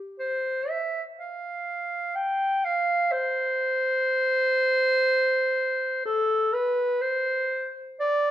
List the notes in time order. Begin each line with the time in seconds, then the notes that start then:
0.20 C5
0.69 E5
1.19 F5
2.16 G5
2.64 F5
3.12 C5
6.06 A4
6.54 B4
7.01 C5
8.00 D5